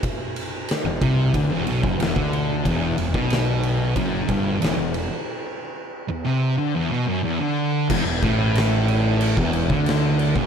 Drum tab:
CC |----------------|----------------|----------------|x-x-x-x-x-x-x-x-|
RD |x-x-x-x-x-x-x-x-|x-x-x-x-x-x-x-x-|----------------|----------------|
SD |----o-------o---|----o-------o---|----------------|----o-------o---|
BD |o-----o-o--o-o--|o--o----o-o-----|----------------|o-o------o-o---o|